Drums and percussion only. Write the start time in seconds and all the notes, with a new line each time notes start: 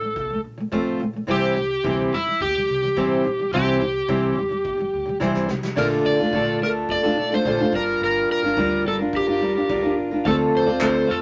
0.16 kick
0.72 kick
1.29 kick
1.84 kick
2.41 kick
2.97 kick
3.53 kick
4.09 kick
4.65 kick
5.21 kick, snare
5.35 snare
5.49 snare
5.63 snare
5.77 kick, crash
6.33 kick
6.89 kick
7.45 kick
7.73 kick
8.57 kick
9.13 kick
9.69 kick
10.25 kick
10.81 kick, clap